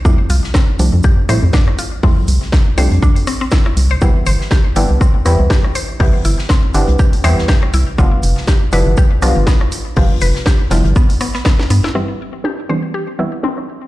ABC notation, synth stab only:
X:1
M:4/4
L:1/8
Q:"Swing 16ths" 1/4=121
K:C
V:1 name="Synth stab"
[F,G,A,CE]3 [F,G,A,CD]2 [F,G,A,CE]3 | [F,G,A,CE]3 [F,G,A,CD]2 z3 | [E,G,B,CE]3 [E,G,B,CD]2 [E,G,B,CE]3 | [E,G,B,CE]3 [E,G,B,CD]2 [E,G,B,CE]3 |
[F,G,B,DF]3 [F,G,B,DE]2 [F,G,B,DF]3 | [F,G,B,DF]3 [F,G,B,DE]2 z3 | [E,G,B,CE]3 [E,G,B,CD]2 [E,G,B,CE]3 |]